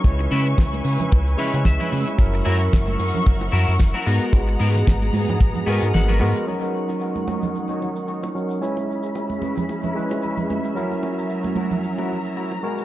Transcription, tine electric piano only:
X:1
M:4/4
L:1/8
Q:"Swing 16ths" 1/4=112
K:C#dor
V:1 name="Tine electric piano"
[G,CEc]4- [G,CEc] [G,CEB]3 | [F,CEA]6- [F,CEA] [G,B,FA] | [G,B,F]4- [G,B,F] [G,B,FA]2 [G,B,FA] | [F,CDA]6- [F,CDA] [F,CDA] |
[G,CEc]4- [G,CEc] [G,CEB]3 | [F,CEA]6- [F,CEA] [G,B,FA] |]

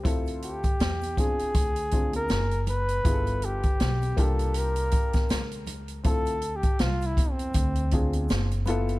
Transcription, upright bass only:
X:1
M:4/4
L:1/16
Q:"Swing 16ths" 1/4=80
K:Dm
V:1 name="Upright bass" clef=bass
D,,4 E,,3 z D,,4 _G,,,4 | G,,,4 =B,,,2 C,,4 z2 ^C,,4 | D,,3 z C,,2 E,,2 D,,4 ^F,,,4 |]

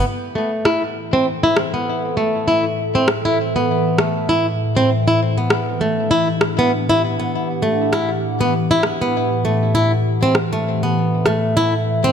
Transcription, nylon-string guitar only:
X:1
M:4/4
L:1/16
Q:"Swing 16ths" 1/4=99
K:Em
V:1 name="Nylon-string guitar"
z2 A,2 E z2 C z E z B,3 A,2 | E z2 C z E z B,3 A,2 E z2 C | z E z B,3 A,2 E z2 B, z E z B,- | B,2 A,2 E z2 B, z E z B,3 A,2 |
E z2 C z A,2 B,3 A,2 E z2 C |]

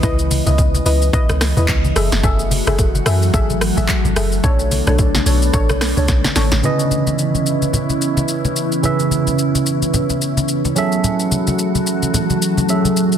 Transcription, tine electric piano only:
X:1
M:4/4
L:1/8
Q:"Swing 16ths" 1/4=109
K:C#phr
V:1 name="Tine electric piano"
z8 | z8 | z8 | [C,CEB^d]8 |
[C,CEBe]6- [C,CEBe] [F,CGAe]- | [F,CGAe]6 [F,CGAe]2 |]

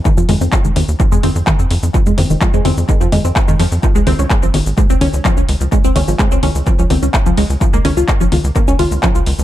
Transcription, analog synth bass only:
X:1
M:4/4
L:1/16
Q:1/4=127
K:Dblyd
V:1 name="Analog synth bass" clef=bass
z F,, F,, F,, z F,,, E,, E,, z F,, F,, F,, z F,, F,, F,, | z F,, F,, F,,, z F,, F,, F,, z F,, F,, F,, z F,, F,, F,, | z D,, D,, D,, z A,,, A,,, A,,, z D,, D,, D,, z D,, D,, D,, | z D,, D,, A,,, z D,, D,, D,, z D,, D,, D,, z D,, D,, D,, |
z D,, D,, D,, z A,,, D,, D,, z D,, D,, D,, z D,, D,, D,, |]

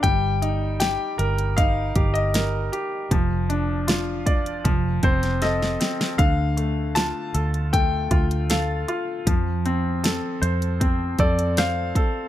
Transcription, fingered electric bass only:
X:1
M:4/4
L:1/16
Q:1/4=78
K:Dphr
V:1 name="Fingered electric bass" clef=bass
G,,,4- G,,, z G,,,4 G,,,4 z2 | F,,,8 F,,,2 F,,,4 z2 | D,,4- D,, z D,,4 D,,4 z2 | F,,4- F,, z F,,4 F,,4 z2 |]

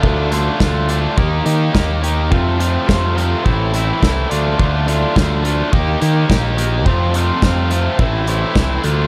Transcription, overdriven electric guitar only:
X:1
M:4/4
L:1/8
Q:1/4=106
K:F
V:1 name="Overdriven electric guitar"
[D,A,DF] [D,A,DF] [D,A,DF] [D,A,DF] [_E,B,_EG] [E,B,EG] [E,B,EG] [E,B,EG] | [F,,C,F,A,CF] [F,,C,F,A,CF] [F,,C,F,A,CF] [F,,C,F,A,CF] [A,,E,A,CE] [A,,E,A,CE] [A,,E,A,CE] [D,A,DF] | [D,A,DF] [D,A,DF] [D,A,DF] [D,A,DF] [_E,B,_EG] [E,B,EG] [E,B,EG] [E,B,EG] | [F,,C,F,A,CF] [F,,C,F,A,CF] [F,,C,F,A,CF] [F,,C,F,A,CF] [A,,E,A,CE] [A,,E,A,CE] [A,,E,A,CE] [D,A,DF] |]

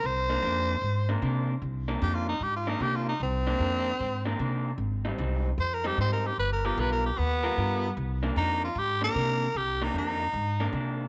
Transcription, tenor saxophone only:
X:1
M:4/4
L:1/8
Q:"Swing" 1/4=151
K:Cm
V:1 name="Tenor saxophone"
c6 z2 | z2 (3G F E (3G F E (3G F E | C6 z2 | z4 (3c B G (3c B G |
(3=B ^A G (3B A G =B,4 | z2 E F G B3 | G E E4 z2 |]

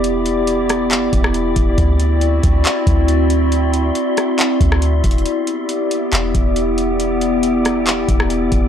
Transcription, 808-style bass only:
X:1
M:4/4
L:1/8
Q:1/4=138
K:Em
V:1 name="808-style bass" clef=bass
E,,,4- E,,, E,,,2 E,,, | D,,3 D,, z D,,3- | D,,2 z3 D,,2 E,,, | z4 E,,, E,,,3- |
E,,,4- E,,, E,,,2 E,,, |]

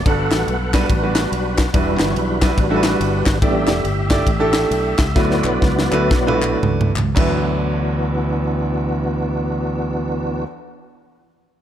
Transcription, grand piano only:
X:1
M:4/4
L:1/16
Q:"Swing" 1/4=131
K:D
V:1 name="Grand piano"
[G,B,DFA]4 z2 [G,B,DFB]2 z [G,B,DFB]4- [G,B,DFB] z2 | [G,DEFB]4 z2 [G,DEFB]2 z [G,DEFAB]4- [G,DEFAB] z2 | [A,DEGd]4 z2 [A,DEGd]2 z [A,DEGA]4- [A,DEGA] z2 | [A,DEFB]4 z2 [A,DEFB]2 z [A,DE=F^FB]4- [A,DE=F^FB] z2 |
[F,DEB]16- | [F,DEB]16 |]
V:2 name="Grand piano" clef=bass
G,,6 z8 z2 | E,6 z8 z2 | A,,6 z8 z2 | D,6 z8 z2 |
D,,16- | D,,16 |]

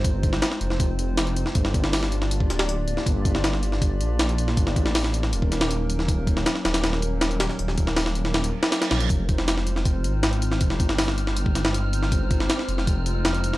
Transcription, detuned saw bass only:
X:1
M:4/4
L:1/8
Q:1/4=159
K:Fdor
V:1 name="Detuned saw bass" clef=bass
G,,,2 z F,,,4 z | G,,,4- G,,, D,,,2 z | G,,,4- G,,, B,,,3 | G,,, =A,,,3 E,,,4- |
E,,,2 z E,,,4 z | E,,,4- E,,, z2 B,,, | F,,,4- F,,, A,,,3 | F,,, G,,,6- G,,,- |
G,,,2 z F,,,4 z |]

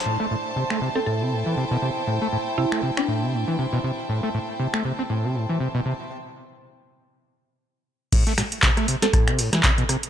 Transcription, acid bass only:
X:1
M:4/4
L:1/16
Q:"Swing 16ths" 1/4=119
K:Am
V:1 name="Acid bass" clef=bass
A,, A, A,, z C, A, C, C A,, C, A,, E, C, B,, C, z | A,, A, A,, z C, A, C, C A,, C, A,, E, C, B,, C, z | A,, A, A,, z C, A, C, C A,, C, A,, E, C, B,, C, z | z16 |
A,, A, A,, z C, A, C, C A,, C, A,, E, C, B,, C, z |]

